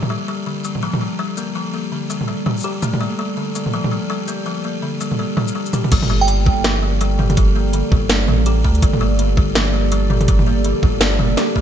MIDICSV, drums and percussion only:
0, 0, Header, 1, 2, 480
1, 0, Start_track
1, 0, Key_signature, -2, "minor"
1, 0, Tempo, 363636
1, 132, Time_signature, 4, 2, 24, 8
1, 15329, End_track
2, 0, Start_track
2, 0, Title_t, "Drums"
2, 34, Note_on_c, 9, 45, 55
2, 166, Note_off_c, 9, 45, 0
2, 849, Note_on_c, 9, 82, 61
2, 981, Note_off_c, 9, 82, 0
2, 994, Note_on_c, 9, 45, 33
2, 1126, Note_off_c, 9, 45, 0
2, 1235, Note_on_c, 9, 45, 47
2, 1367, Note_off_c, 9, 45, 0
2, 1811, Note_on_c, 9, 82, 60
2, 1943, Note_off_c, 9, 82, 0
2, 2772, Note_on_c, 9, 82, 63
2, 2904, Note_off_c, 9, 82, 0
2, 2915, Note_on_c, 9, 45, 33
2, 3047, Note_off_c, 9, 45, 0
2, 3251, Note_on_c, 9, 45, 50
2, 3383, Note_off_c, 9, 45, 0
2, 3395, Note_on_c, 9, 82, 29
2, 3418, Note_off_c, 9, 82, 0
2, 3418, Note_on_c, 9, 82, 36
2, 3441, Note_off_c, 9, 82, 0
2, 3441, Note_on_c, 9, 82, 44
2, 3466, Note_off_c, 9, 82, 0
2, 3466, Note_on_c, 9, 82, 52
2, 3598, Note_off_c, 9, 82, 0
2, 3731, Note_on_c, 9, 45, 47
2, 3731, Note_on_c, 9, 82, 62
2, 3863, Note_off_c, 9, 45, 0
2, 3863, Note_off_c, 9, 82, 0
2, 3875, Note_on_c, 9, 45, 56
2, 4007, Note_off_c, 9, 45, 0
2, 4690, Note_on_c, 9, 82, 65
2, 4822, Note_off_c, 9, 82, 0
2, 4833, Note_on_c, 9, 45, 36
2, 4965, Note_off_c, 9, 45, 0
2, 5073, Note_on_c, 9, 45, 50
2, 5205, Note_off_c, 9, 45, 0
2, 5648, Note_on_c, 9, 82, 64
2, 5780, Note_off_c, 9, 82, 0
2, 6609, Note_on_c, 9, 82, 62
2, 6741, Note_off_c, 9, 82, 0
2, 6752, Note_on_c, 9, 45, 36
2, 6884, Note_off_c, 9, 45, 0
2, 7088, Note_on_c, 9, 45, 52
2, 7220, Note_off_c, 9, 45, 0
2, 7231, Note_on_c, 9, 82, 65
2, 7363, Note_off_c, 9, 82, 0
2, 7473, Note_on_c, 9, 82, 36
2, 7567, Note_off_c, 9, 82, 0
2, 7567, Note_on_c, 9, 45, 53
2, 7567, Note_on_c, 9, 82, 63
2, 7699, Note_off_c, 9, 45, 0
2, 7699, Note_off_c, 9, 82, 0
2, 7713, Note_on_c, 9, 45, 62
2, 7809, Note_on_c, 9, 42, 85
2, 7809, Note_on_c, 9, 49, 104
2, 7812, Note_on_c, 9, 36, 121
2, 7845, Note_off_c, 9, 45, 0
2, 7941, Note_off_c, 9, 42, 0
2, 7941, Note_off_c, 9, 49, 0
2, 7944, Note_off_c, 9, 36, 0
2, 7952, Note_on_c, 9, 45, 64
2, 8084, Note_off_c, 9, 45, 0
2, 8289, Note_on_c, 9, 42, 68
2, 8421, Note_off_c, 9, 42, 0
2, 8532, Note_on_c, 9, 36, 104
2, 8664, Note_off_c, 9, 36, 0
2, 8770, Note_on_c, 9, 38, 121
2, 8770, Note_on_c, 9, 42, 83
2, 8902, Note_off_c, 9, 38, 0
2, 8902, Note_off_c, 9, 42, 0
2, 9249, Note_on_c, 9, 42, 70
2, 9381, Note_off_c, 9, 42, 0
2, 9490, Note_on_c, 9, 45, 54
2, 9622, Note_off_c, 9, 45, 0
2, 9634, Note_on_c, 9, 42, 39
2, 9634, Note_on_c, 9, 45, 66
2, 9729, Note_off_c, 9, 42, 0
2, 9729, Note_on_c, 9, 42, 86
2, 9731, Note_on_c, 9, 36, 126
2, 9766, Note_off_c, 9, 45, 0
2, 9861, Note_off_c, 9, 42, 0
2, 9863, Note_off_c, 9, 36, 0
2, 10208, Note_on_c, 9, 42, 67
2, 10340, Note_off_c, 9, 42, 0
2, 10446, Note_on_c, 9, 45, 37
2, 10451, Note_on_c, 9, 36, 112
2, 10578, Note_off_c, 9, 45, 0
2, 10583, Note_off_c, 9, 36, 0
2, 10686, Note_on_c, 9, 38, 127
2, 10686, Note_on_c, 9, 42, 84
2, 10818, Note_off_c, 9, 38, 0
2, 10818, Note_off_c, 9, 42, 0
2, 10928, Note_on_c, 9, 45, 62
2, 11060, Note_off_c, 9, 45, 0
2, 11167, Note_on_c, 9, 42, 69
2, 11299, Note_off_c, 9, 42, 0
2, 11411, Note_on_c, 9, 36, 66
2, 11543, Note_off_c, 9, 36, 0
2, 11549, Note_on_c, 9, 42, 39
2, 11648, Note_off_c, 9, 42, 0
2, 11648, Note_on_c, 9, 42, 84
2, 11651, Note_on_c, 9, 36, 127
2, 11780, Note_off_c, 9, 42, 0
2, 11783, Note_off_c, 9, 36, 0
2, 11793, Note_on_c, 9, 45, 59
2, 11925, Note_off_c, 9, 45, 0
2, 12131, Note_on_c, 9, 42, 65
2, 12263, Note_off_c, 9, 42, 0
2, 12372, Note_on_c, 9, 36, 111
2, 12504, Note_off_c, 9, 36, 0
2, 12612, Note_on_c, 9, 38, 127
2, 12612, Note_on_c, 9, 42, 82
2, 12744, Note_off_c, 9, 38, 0
2, 12744, Note_off_c, 9, 42, 0
2, 13091, Note_on_c, 9, 42, 69
2, 13223, Note_off_c, 9, 42, 0
2, 13331, Note_on_c, 9, 45, 51
2, 13463, Note_off_c, 9, 45, 0
2, 13474, Note_on_c, 9, 42, 38
2, 13474, Note_on_c, 9, 45, 60
2, 13570, Note_off_c, 9, 42, 0
2, 13570, Note_on_c, 9, 42, 77
2, 13573, Note_on_c, 9, 36, 127
2, 13606, Note_off_c, 9, 45, 0
2, 13702, Note_off_c, 9, 42, 0
2, 13705, Note_off_c, 9, 36, 0
2, 13716, Note_on_c, 9, 45, 60
2, 13848, Note_off_c, 9, 45, 0
2, 14051, Note_on_c, 9, 42, 65
2, 14183, Note_off_c, 9, 42, 0
2, 14293, Note_on_c, 9, 45, 34
2, 14294, Note_on_c, 9, 36, 110
2, 14425, Note_off_c, 9, 45, 0
2, 14426, Note_off_c, 9, 36, 0
2, 14530, Note_on_c, 9, 38, 126
2, 14530, Note_on_c, 9, 42, 81
2, 14662, Note_off_c, 9, 38, 0
2, 14662, Note_off_c, 9, 42, 0
2, 14771, Note_on_c, 9, 45, 60
2, 14903, Note_off_c, 9, 45, 0
2, 15012, Note_on_c, 9, 38, 64
2, 15012, Note_on_c, 9, 42, 65
2, 15144, Note_off_c, 9, 38, 0
2, 15144, Note_off_c, 9, 42, 0
2, 15254, Note_on_c, 9, 36, 65
2, 15329, Note_off_c, 9, 36, 0
2, 15329, End_track
0, 0, End_of_file